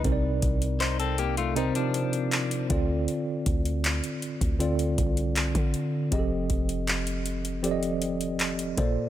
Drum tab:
HH |x-xxxxxxxxxxxxx-|x-xxxxxxxxxxxxx-|x-xxxxxxxxxxxxx-|
CP |----x-------x---|----x-------x---|----x-------x---|
BD |o-o-----------o-|--o----o--o--o--|o-o-----------o-|